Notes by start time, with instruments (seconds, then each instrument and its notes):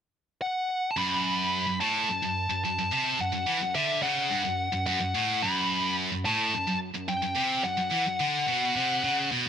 0.42 lead electric guitar F#5
0.91 lead electric guitar A5
0.97 distorted electric guitar F#2, lead electric guitar B5
1.67 distorted electric guitar F#2
1.80 distorted electric guitar A2, lead electric guitar A5
2.09 distorted electric guitar F#2
2.22 distorted electric guitar F#2
2.50 distorted electric guitar F#2
2.64 distorted electric guitar F#2, lead electric guitar A5
2.79 distorted electric guitar F#2
2.92 distorted electric guitar C3
3.19 distorted electric guitar F#2, lead electric guitar F#5
3.33 distorted electric guitar F#2
3.47 distorted electric guitar E3
3.61 distorted electric guitar F#2
3.75 distorted electric guitar D3, lead electric guitar E5
4.03 distorted electric guitar C#3, lead electric guitar F#5
4.30 distorted electric guitar G2
4.45 distorted electric guitar F#2
4.73 distorted electric guitar F#2
4.86 distorted electric guitar F#2, lead electric guitar F#5
5.00 distorted electric guitar F#2
5.15 distorted electric guitar A2
5.42 distorted electric guitar F#2, lead electric guitar B5
6.12 distorted electric guitar F#2
6.25 distorted electric guitar A2, lead electric guitar A5
6.54 distorted electric guitar F#2
6.68 distorted electric guitar F#2
6.95 distorted electric guitar F#2
7.08 distorted electric guitar F#2, lead electric guitar G5
7.22 distorted electric guitar F#2
7.36 distorted electric guitar C3
7.64 distorted electric guitar F#2, lead electric guitar F#5
7.78 distorted electric guitar F#2
7.91 distorted electric guitar E3
8.06 distorted electric guitar F#2
8.20 distorted electric guitar D3
8.48 distorted electric guitar B2
8.76 distorted electric guitar C3
9.04 distorted electric guitar C#3
9.32 distorted electric guitar B2